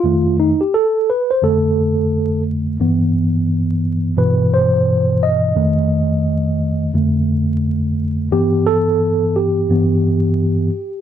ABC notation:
X:1
M:4/4
L:1/16
Q:"Swing 16ths" 1/4=87
K:G
V:1 name="Tine electric piano"
=F2 _E G A2 B c A6 z2 | z8 B2 c4 _e2- | _e8 z8 | G2 A4 G8- G2 |]
V:2 name="Tine electric piano" clef=bass
[=F,,_E,A,]2 z6 [F,,D,A,]8 | [G,,E,B,]8 [G,,B,,E,]8 | [=F,,_E,A,]8 [F,,D,A,]8 | [G,,E,B,]8 [G,,E,B,]6 z2 |]